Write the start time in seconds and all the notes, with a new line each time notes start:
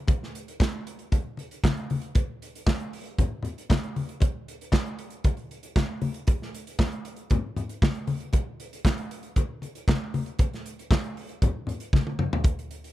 0.08 kick, closed hi-hat, muted conga
0.23 snare
0.35 closed hi-hat
0.48 closed hi-hat
0.60 kick, snare, clap, high conga
0.87 closed hi-hat
0.99 closed hi-hat
1.12 kick, closed hi-hat, muted conga
1.37 closed hi-hat, muted conga
1.51 closed hi-hat
1.64 kick, snare, clap, high conga
1.77 closed hi-hat
1.90 open hi-hat, high conga
2.02 closed hi-hat
2.15 kick, closed hi-hat, muted conga
2.42 closed hi-hat
2.55 closed hi-hat
2.66 kick, snare, clap, high conga
2.80 closed hi-hat
2.93 open hi-hat
3.05 closed hi-hat
3.18 kick, closed hi-hat, muted conga, low conga
3.43 closed hi-hat, low conga
3.58 closed hi-hat
3.70 kick, snare, clap, high conga
3.83 closed hi-hat
3.96 open hi-hat, high conga
4.09 closed hi-hat
4.20 kick, closed hi-hat, muted conga
4.48 closed hi-hat
4.61 closed hi-hat
4.72 kick, snare, clap, high conga
4.86 closed hi-hat
4.99 closed hi-hat
5.10 closed hi-hat
5.24 kick, closed hi-hat, muted conga
5.37 closed hi-hat
5.51 closed hi-hat
5.63 closed hi-hat
5.76 kick, snare, clap, high conga
6.01 open hi-hat, high conga
6.14 closed hi-hat
6.27 kick, closed hi-hat, muted conga
6.42 snare
6.55 closed hi-hat
6.67 closed hi-hat
6.79 kick, snare, clap, high conga
6.92 closed hi-hat
7.05 closed hi-hat
7.16 closed hi-hat
7.30 kick, closed hi-hat, muted conga, low conga
7.57 closed hi-hat, muted conga, low conga
7.69 closed hi-hat
7.82 kick, snare, clap, high conga
7.95 closed hi-hat
8.07 open hi-hat, high conga
8.20 closed hi-hat
8.33 kick, closed hi-hat, muted conga
8.60 closed hi-hat
8.73 closed hi-hat
8.85 kick, snare, clap, high conga
8.98 closed hi-hat
9.11 closed hi-hat
9.23 closed hi-hat
9.36 kick, closed hi-hat, muted conga
9.62 closed hi-hat, muted conga
9.75 closed hi-hat
9.88 kick, snare, clap, high conga
10.14 open hi-hat, high conga
10.26 closed hi-hat
10.39 kick, closed hi-hat, muted conga
10.53 snare, closed hi-hat
10.66 closed hi-hat
10.79 closed hi-hat
10.91 kick, snare, clap, high conga
11.04 closed hi-hat
11.17 open hi-hat
11.29 closed hi-hat
11.42 kick, closed hi-hat, muted conga, low conga
11.67 closed hi-hat, low conga
11.80 closed hi-hat
11.93 kick, snare, high conga
12.07 high tom
12.19 mid tom, high conga
12.33 floor tom
12.44 kick, closed hi-hat, muted conga
12.59 closed hi-hat
12.71 closed hi-hat
12.84 closed hi-hat